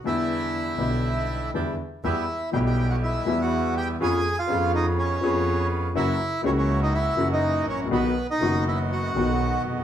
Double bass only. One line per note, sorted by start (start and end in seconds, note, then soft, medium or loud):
0.05 0.76 E2 medium
0.79 1.50 B1 medium
1.55 1.75 E2 medium
2.04 2.25 E2 medium
2.54 3.24 B1 loud
3.26 3.97 E2 loud
4.01 4.21 F2 medium
4.50 5.19 F2 loud
5.23 5.92 F2 loud
5.96 6.16 F#1 medium
6.44 7.14 C#2 loud
7.18 7.66 F#1 loud
7.67 7.90 A1 medium
7.91 8.12 B1 medium
8.40 9.11 F#1 loud
9.15 9.65 B1 medium
9.65 9.84 F1 medium